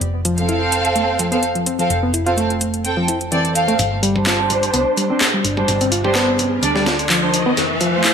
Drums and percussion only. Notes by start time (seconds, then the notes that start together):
0.01 closed hi-hat
0.25 closed hi-hat
0.38 closed hi-hat
0.49 closed hi-hat
0.72 closed hi-hat
0.85 closed hi-hat
0.96 closed hi-hat
1.19 closed hi-hat
1.32 closed hi-hat
1.43 closed hi-hat
1.55 closed hi-hat
1.66 closed hi-hat
1.79 closed hi-hat
1.90 closed hi-hat
2.14 closed hi-hat
2.27 closed hi-hat
2.38 closed hi-hat
2.50 closed hi-hat
2.61 closed hi-hat
2.74 closed hi-hat
2.85 closed hi-hat
3.08 closed hi-hat
3.21 closed hi-hat
3.32 closed hi-hat
3.45 closed hi-hat
3.55 closed hi-hat
3.68 closed hi-hat
3.79 kick, closed hi-hat
4.03 closed hi-hat
4.16 kick
4.26 snare, clap, closed hi-hat
4.50 kick, closed hi-hat
4.63 closed hi-hat
4.74 closed hi-hat
4.97 closed hi-hat
5.21 snare, clap, closed hi-hat
5.45 closed hi-hat
5.57 kick
5.68 kick, closed hi-hat
5.81 closed hi-hat
5.92 closed hi-hat
6.05 kick
6.15 snare, clap, closed hi-hat
6.39 kick, closed hi-hat
6.63 closed hi-hat
6.76 snare
6.86 snare, closed hi-hat
6.99 closed hi-hat
7.10 clap, closed hi-hat
7.34 closed hi-hat
7.57 snare, closed hi-hat
7.81 closed hi-hat
8.04 snare, clap, closed hi-hat